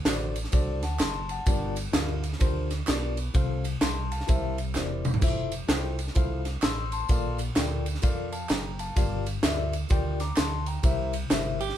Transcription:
Already playing: tine electric piano D3
0.05 fingered electric bass A1, tine electric piano D4 F#4 A4 C5 D5, snare, clap, ride, tambourine
0.36 ride, tambourine
0.44 snare
0.52 fingered electric bass C2, tine electric piano D4 F#4 A4 C5 D5, kick, ride, tambourine
0.82 fingered electric bass D2, tine electric piano F#5 A5, snare, ride, tambourine
0.99 fingered electric bass F#1, tine electric piano A5 C6, snare, clap, ride, tambourine
1.29 tine electric piano F#5 A5, ride, tambourine
1.46 fingered electric bass G1, tine electric piano G2 D4 F4 G4 A#4 D5, kick, ride, tambourine
1.76 ride, tambourine
1.92 fingered electric bass D2, tine electric piano D4 F4 G4 A#4 F5, snare, clap, ride, tambourine
2.24 ride, tambourine
2.33 snare
2.39 fingered electric bass D2, tine electric piano D4 F4 G4 A#4 C5, kick, ride, tambourine
2.70 snare, ride, tambourine
2.87 fingered electric bass B1, tine electric piano D4 F4 G4 A#4 D5, snare, clap, ride, tambourine
3.17 ride, tambourine
3.34 fingered electric bass C2, tine electric piano C3 C4 F4 A4 C5 F5, kick, ride, tambourine
3.64 ride, tambourine
3.81 fingered electric bass C2, tine electric piano A5 C6, snare, clap, ride, tambourine
4.12 tine electric piano F5 A5, ride, tambourine
4.20 snare
4.27 fingered electric bass C2, tine electric piano C3 E4 G4 A#4 C5 E5, kick, ride, tambourine
4.58 ride, tambourine
4.74 fingered electric bass E1, tine electric piano E4 G4 A#4 C5 D5, snare, clap, tambourine
5.05 mid tom, tambourine
5.14 floor tom
5.21 fingered electric bass F1, tine electric piano E4 F4 A4 C5 E5, kick, tambourine, splash
5.52 ride, tambourine
5.68 fingered electric bass C2, tine electric piano E4 F4 A4 C5 G5, snare, clap, ride, tambourine
5.99 ride, tambourine
6.07 snare
6.15 fingered electric bass C2, tine electric piano E4 F4 A4 C5 F5, kick, ride, tambourine
6.45 snare, ride, tambourine
6.62 fingered electric bass A1, tine electric piano C6 E6, snare, clap, ride, tambourine
6.92 tine electric piano A5 C6, ride, tambourine
7.09 fingered electric bass A#1, tine electric piano A#2 F4 A4 A#4 D5 F5, kick, ride, tambourine
7.38 ride, tambourine
7.56 fingered electric bass D2, tine electric piano F4 A4 A#4 D5 G5, snare, clap, ride, tambourine
7.86 ride, tambourine
7.95 snare
8.02 fingered electric bass F2, tine electric piano F4 A4 A#4 D5 F5, kick, ride, tambourine
8.32 tine electric piano F5 A5, ride, tambourine
8.49 fingered electric bass F#1, tine electric piano G5 A#5, snare, clap, ride, tambourine
8.79 tine electric piano F5 A5, ride, tambourine
8.96 fingered electric bass G1, tine electric piano G2 F4 G4 A#4 D5 F5, kick, ride, tambourine
9.26 ride, tambourine
9.42 fingered electric bass D2, tine electric piano F4 G4 A#4 D5 E5, snare, clap, ride, tambourine
9.73 ride, tambourine
9.89 fingered electric bass D2, tine electric piano F4 G4 A#4 D5 G5, kick, ride, tambourine
10.20 tine electric piano A#5 D6, snare, ride, tambourine
10.36 fingered electric bass D2, tine electric piano A5 C6, snare, clap, ride, tambourine
10.66 tine electric piano G5 A#5, ride, tambourine
10.83 fingered electric bass C2, tine electric piano C3 E4 G4 A#4 C5 E5, kick, ride, tambourine
11.13 ride, tambourine
11.30 fingered electric bass G1, tine electric piano E4 G4 A#4 C5 E5, snare, clap, ride, tambourine
11.60 clean electric guitar G4, ride, tambourine
11.69 snare

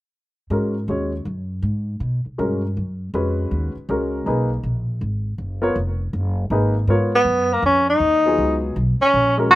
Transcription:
0.50 upright bass G#2, grand piano G#3 C#4 F#4 A#4
0.88 upright bass D#2, grand piano G#3 C#4 F#4 C#5
1.25 upright bass F#2
1.62 upright bass G#2
2.00 upright bass B2
2.26 muted upright bass stroke
2.38 upright bass G2, grand piano G#3 C#4 F#4 A#4
2.77 upright bass F#2
3.14 upright bass F2, grand piano G#3 C#4 F#4 B4
3.51 upright bass D#2
3.75 muted upright bass stroke
3.89 upright bass C#2, grand piano G#3 C#4 F#4 A#4
4.26 upright bass B1, grand piano A#3 D#4 G#4 B4
4.63 upright bass A#1
5.01 upright bass G#1
5.38 upright bass F#1
5.62 grand piano B3 F4 A#4 C#5
5.76 upright bass F1
6.13 upright bass F#1
6.50 upright bass G#1, grand piano A#3 D#4 G#4 B4
6.87 upright bass G#2, grand piano B3 F4 A#4 C#5
7.15 tenor saxophone B3
7.24 upright bass F#2
7.53 tenor saxophone A#3
7.62 upright bass F2, tenor saxophone C#4
7.89 tenor saxophone D#4
8.00 upright bass D#2
8.26 grand piano F#3 B3 F4 G#4
8.38 upright bass C#2
8.76 upright bass B1
9.00 tenor saxophone C#4, muted upright bass stroke
9.13 upright bass A#1
9.37 grand piano G#3 C#4 F#4 A#4
9.51 upright bass G#1, tenor saxophone F#4

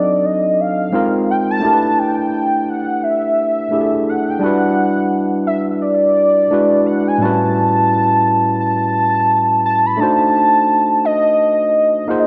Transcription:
Already playing: tine electric piano F#3 C4 D4 D#4 A4, soft synth lead D5
0.25 soft synth lead D#5
0.61 soft synth lead F5
0.92 tine electric piano G#3 C4 D#4 F4 A#4
1.31 soft synth lead G5
1.51 soft synth lead A5
1.60 tine electric piano A3 D4 E4
1.65 tine electric piano G4 A#4
1.73 tine electric piano B4
1.99 soft synth lead G5
2.69 soft synth lead F#5
3.03 soft synth lead E5
3.71 tine electric piano A3 D4 E4 G4 G#4
3.81 tine electric piano A4
4.09 soft synth lead F#5
4.30 soft synth lead G5
4.39 tine electric piano G3 D4 E4
4.43 tine electric piano F#4 B4, soft synth lead F#5
5.47 soft synth lead E5
5.81 soft synth lead D5
6.51 tine electric piano G#3 D4 E4 F#4 B4
6.86 soft synth lead F#5
7.08 soft synth lead G#5
7.18 tine electric piano A2 G3 C#4, soft synth lead A5
7.22 tine electric piano E4 F#4 B4
8.60 soft synth lead A5
9.66 soft synth lead A5
9.86 soft synth lead B5
9.97 tine electric piano A3 D4 D#4, soft synth lead A5
10.02 tine electric piano F#4 C5
11.05 soft synth lead D#5
12.08 tine electric piano A#3 D#4 F4 G#4 C5, soft synth lead F#5
12.19 soft synth lead D#5

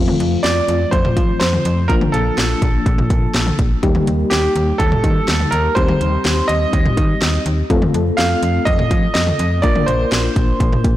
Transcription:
Already playing: fm bass F2, fm electric piano F3 A3 C4 F4
0.08 mid tom
0.20 fm bass F2, closed hi-hat
0.43 fm bass F2, grand piano D5, snare, closed hi-hat
0.68 fm bass F2, closed hi-hat
0.91 fm bass F2, grand piano C5, kick, closed hi-hat
1.05 mid tom
1.17 fm bass F3, kick, closed hi-hat
1.40 fm bass F2, grand piano C5, snare, closed hi-hat
1.53 mid tom
1.65 fm bass F2, closed hi-hat
1.88 fm bass A#1, fm electric piano F3 A#3 D4 F4, grand piano A#4, kick, closed hi-hat
2.01 mid tom
2.12 fm bass A#1, grand piano A4, closed hi-hat
2.38 fm bass A#1, snare, closed hi-hat
2.62 fm bass A#1, kick, closed hi-hat
2.86 fm bass A#1, kick, closed hi-hat
2.98 mid tom
3.10 fm bass A#2, kick, closed hi-hat
3.34 fm bass A#1, snare, closed hi-hat
3.47 mid tom
3.59 fm bass A#1, kick, closed hi-hat
3.83 fm bass D#2, fm electric piano G3 A#3 D#4 G4, kick, closed hi-hat
3.95 mid tom
4.07 fm bass D#2, closed hi-hat
4.30 fm bass D#2, grand piano G4, snare, closed hi-hat
4.56 fm bass D#2, closed hi-hat
4.78 fm bass D#2, grand piano A4, kick, closed hi-hat
4.92 mid tom
5.04 fm bass D#3, kick, closed hi-hat
5.28 fm bass D#2, snare, closed hi-hat
5.40 mid tom
5.51 fm bass D#2, grand piano A#4, closed hi-hat
5.75 fm bass D#2, fm electric piano G3 C4 D#4 G4, grand piano C5, kick, closed hi-hat
5.88 mid tom
6.01 fm bass D#2, closed hi-hat
6.25 fm bass D#2, snare, closed hi-hat
6.48 fm bass D#2, grand piano D#5, closed hi-hat
6.73 fm bass D#2, kick, closed hi-hat
6.86 mid tom
6.97 fm bass D#3, kick, closed hi-hat
7.22 fm bass D#2, snare, closed hi-hat
7.46 fm bass D#2, closed hi-hat
7.70 fm bass F2, fm electric piano A3 C4 F4 A4, kick, closed hi-hat
7.82 mid tom
7.94 fm bass F2, closed hi-hat
8.17 fm bass F2, grand piano F5, snare, closed hi-hat
8.43 fm bass F2, closed hi-hat
8.65 fm bass F2, grand piano D#5, kick, closed hi-hat
8.79 mid tom
8.91 fm bass F3, kick, closed hi-hat
9.14 fm bass F2, grand piano D#5, snare, closed hi-hat
9.27 mid tom
9.39 fm bass F2, closed hi-hat
9.62 fm bass A#1, fm electric piano A#3 D4 F4 A#4, grand piano D5, kick, closed hi-hat
9.75 mid tom
9.86 fm bass A#1, grand piano C5, closed hi-hat
10.12 fm bass A#1, snare, closed hi-hat
10.36 fm bass A#1, kick, closed hi-hat
10.60 fm bass A#1, kick, closed hi-hat
10.72 mid tom
10.84 fm bass A#2, kick, closed hi-hat

